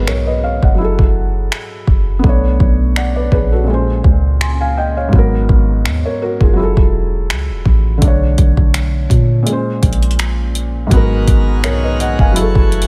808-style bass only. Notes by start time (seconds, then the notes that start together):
0.08 B1
0.63 F#1
0.99 F#1
1.88 F#1
2.24 B1
2.60 B1
3.32 A#1
4.04 C#2
5.13 G#1
5.49 G#1
5.85 D#2
6.41 F#1
6.77 E1
7.30 C#2
7.50 E1
7.66 A1
8.02 B1
8.38 B1
9.10 A#2
9.83 A#1
10.91 G#1
11.28 G#1
11.64 B1
12.19 F#1
12.56 F#1